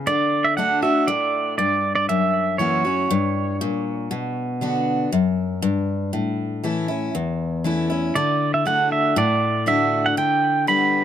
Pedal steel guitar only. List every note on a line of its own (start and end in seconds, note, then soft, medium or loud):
0.07 0.46 D5 loud
0.44 0.56 E5 medium
0.57 0.82 F#5 medium
0.83 1.09 E5 medium
1.07 1.57 D5 loud
1.58 1.94 D5 medium
1.95 2.08 D5 medium
2.09 2.61 E5 loud
2.58 3.56 C#5 medium
8.15 8.54 D5 medium
8.54 8.65 E5 medium
8.67 8.92 F#5 medium
8.92 9.17 E5 medium
9.18 9.69 D5 loud
9.68 10.06 E5 medium
10.06 10.18 F#5 medium
10.18 10.68 G5 loud
10.68 11.04 B5 medium